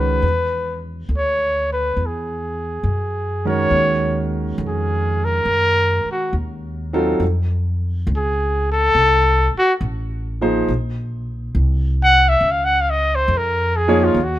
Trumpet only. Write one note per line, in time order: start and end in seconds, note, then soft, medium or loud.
0.00 0.84 B4 medium
1.17 1.69 C#5 medium
1.73 2.08 B4 medium
2.06 3.48 G#4 medium
3.48 4.30 C#5 medium
4.68 5.26 G#4 medium
5.25 6.09 A#4 loud
6.11 6.35 F#4 medium
8.16 8.68 G#4 medium
8.72 9.53 A4 loud
9.58 9.74 F#4 medium
12.03 12.30 F#5 loud
12.29 12.53 E5 medium
12.52 12.66 F5 medium
12.65 12.83 F#5 medium
12.81 12.92 F5 medium
12.90 13.17 D#5 medium
13.15 13.39 C5 medium
13.37 13.78 A#4 medium
13.76 14.06 G#4 loud
14.04 14.25 F4 medium
14.24 14.39 F#4 medium